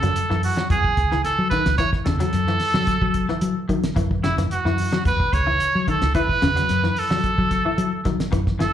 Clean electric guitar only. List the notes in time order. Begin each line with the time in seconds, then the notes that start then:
0.03 F#3
0.30 E3
0.57 F#3
1.12 E3
1.52 D#3
1.79 E3
2.06 C#3
2.20 F#3
2.48 E3
2.75 F#3
3.29 E3
3.69 D#3
3.96 E3
4.24 C#3
4.38 E3
4.65 E3
4.92 F#3
5.46 E3
5.88 D#3
6.15 E3
6.42 C#3
6.56 F#3
6.84 E3
7.10 F#3
7.65 E3
8.05 D#3
8.32 E3
8.59 E3